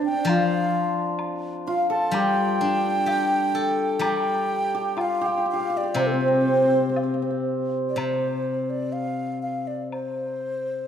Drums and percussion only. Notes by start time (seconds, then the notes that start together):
0.27 high woodblock
1.19 high woodblock
2.14 high woodblock
3.07 low woodblock
4.01 high woodblock
4.98 high woodblock, low woodblock
5.96 high woodblock
6.96 low woodblock
7.98 high woodblock
9.92 high woodblock